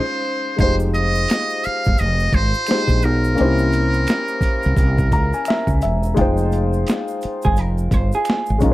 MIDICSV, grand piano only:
0, 0, Header, 1, 2, 480
1, 0, Start_track
1, 0, Key_signature, -4, "minor"
1, 0, Tempo, 697674
1, 407, Time_signature, 4, 2, 24, 8
1, 6012, End_track
2, 0, Start_track
2, 0, Title_t, "Grand piano"
2, 0, Program_c, 0, 0
2, 48, Control_c, 0, 64, 127
2, 387, Note_on_c, 0, 56, 53
2, 398, Note_on_c, 0, 63, 52
2, 411, Note_on_c, 0, 65, 53
2, 415, Control_c, 0, 64, 0
2, 422, Note_on_c, 0, 67, 52
2, 432, Note_on_c, 0, 72, 65
2, 547, Control_c, 0, 64, 127
2, 1810, Note_off_c, 0, 56, 0
2, 1815, Note_off_c, 0, 63, 0
2, 1822, Note_off_c, 0, 65, 0
2, 1827, Note_off_c, 0, 67, 0
2, 1832, Note_off_c, 0, 72, 0
2, 1843, Note_on_c, 0, 56, 46
2, 1847, Note_on_c, 0, 63, 41
2, 1854, Note_on_c, 0, 65, 40
2, 1860, Note_on_c, 0, 67, 43
2, 1864, Note_on_c, 0, 72, 51
2, 2304, Note_on_c, 0, 58, 60
2, 2316, Note_on_c, 0, 61, 55
2, 2317, Note_off_c, 0, 63, 0
2, 2325, Note_off_c, 0, 56, 0
2, 2327, Note_off_c, 0, 67, 0
2, 2328, Note_on_c, 0, 63, 46
2, 2330, Note_off_c, 0, 65, 0
2, 2335, Note_off_c, 0, 72, 0
2, 2335, Control_c, 0, 64, 0
2, 2337, Note_on_c, 0, 67, 53
2, 2347, Note_on_c, 0, 72, 69
2, 2370, Note_on_c, 0, 64, 56
2, 2381, Note_off_c, 0, 63, 0
2, 2463, Control_c, 0, 64, 127
2, 3529, Note_on_c, 0, 82, 70
2, 3663, Note_off_c, 0, 82, 0
2, 3674, Note_on_c, 0, 80, 64
2, 3761, Note_off_c, 0, 80, 0
2, 3771, Note_on_c, 0, 76, 65
2, 3992, Note_off_c, 0, 76, 0
2, 4009, Note_on_c, 0, 76, 61
2, 4208, Note_off_c, 0, 58, 0
2, 4214, Note_off_c, 0, 61, 0
2, 4225, Note_off_c, 0, 67, 0
2, 4226, Note_on_c, 0, 56, 67
2, 4230, Note_off_c, 0, 72, 0
2, 4231, Note_off_c, 0, 76, 0
2, 4237, Note_on_c, 0, 63, 63
2, 4241, Note_off_c, 0, 64, 0
2, 4249, Note_on_c, 0, 65, 67
2, 4255, Control_c, 0, 64, 0
2, 4259, Note_on_c, 0, 79, 66
2, 4272, Note_on_c, 0, 72, 76
2, 4394, Control_c, 0, 64, 127
2, 5889, Note_off_c, 0, 56, 0
2, 5895, Note_off_c, 0, 63, 0
2, 5900, Note_off_c, 0, 65, 0
2, 5905, Note_off_c, 0, 79, 0
2, 5906, Note_on_c, 0, 56, 64
2, 5912, Note_off_c, 0, 72, 0
2, 5917, Note_on_c, 0, 61, 61
2, 5930, Note_on_c, 0, 63, 60
2, 5937, Control_c, 0, 64, 0
2, 5942, Note_on_c, 0, 65, 57
2, 5953, Note_on_c, 0, 70, 60
2, 5994, Note_off_c, 0, 70, 0
2, 6012, Note_off_c, 0, 56, 0
2, 6012, Note_off_c, 0, 61, 0
2, 6012, Note_off_c, 0, 63, 0
2, 6012, Note_off_c, 0, 65, 0
2, 6012, End_track
0, 0, End_of_file